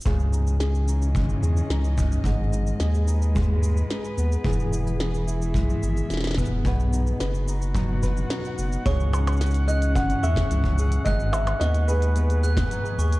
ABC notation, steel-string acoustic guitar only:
X:1
M:4/4
L:1/8
Q:1/4=109
K:C#m
V:1 name="Steel-string acoustic guitar"
[C,G] D G D G, G D C | [G,,G] D G D G, G D B, | [E,G] E G E G, G E B, | [B,,B] D B D F, B D B, |
[C,G] D C G C G2 G | [G,,G] D B, G B, G D G |]